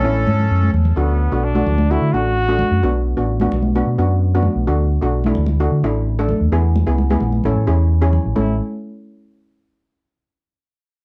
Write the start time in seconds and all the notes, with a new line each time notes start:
Already playing: C#4 A4
0.04 A1 A3 C#4 E4
0.27 G#2, high conga
0.39 low conga
0.51 F#2
0.63 high conga
0.73 E2, low conga
0.85 low conga
0.97 D2 A3 B3 D4 F#4
1.32 B1 A3 D4 F#4
1.44 D4
1.55 A3 D4 F#4, high conga
1.67 D2, low conga
1.78 high conga
1.91 A3 D4 E4 F#4
2.02 D3
2.13 A1 A3 D4 F#4
2.48 A3 D4 F#4
2.59 high conga, low conga
2.71 F#2
2.83 B1 B3 D4 F#4
3.17 A1 B3 D4 F#4
3.40 B3 D4 F#4, high conga
3.52 B1, low conga
3.62 high conga
3.75 B3 D4 F#4
3.87 B2
3.98 F#2 B3 D4 F#4
4.35 B3 D4 F#4
4.43 high conga, low conga
4.55 B1
4.67 D2 A3 D4 F#4
5.02 B1 A3 D4 F#4
5.24 A3 D4 E4, high conga
5.35 D2, low conga
5.46 high conga
5.60 A3 D4 F#4
5.71 D3
5.83 A1 A3 D4 E4
6.19 A3 D4 A4
6.29 high conga, low conga
6.41 D#2
6.52 E2 B3 E4 G#4
6.76 high conga
6.87 C#2 B3 E4 G#4
6.98 high conga
7.10 B3 E4 G#4, high conga
7.21 A#1, low conga
7.32 high conga
7.44 A1 C#4 E4 A4, low conga
7.57 A2
7.67 E2 C#4 E4 G#4
8.02 C#4 E4 G#4
8.13 low conga
8.26 A1
8.36 A1 C#4 E4 A4, high conga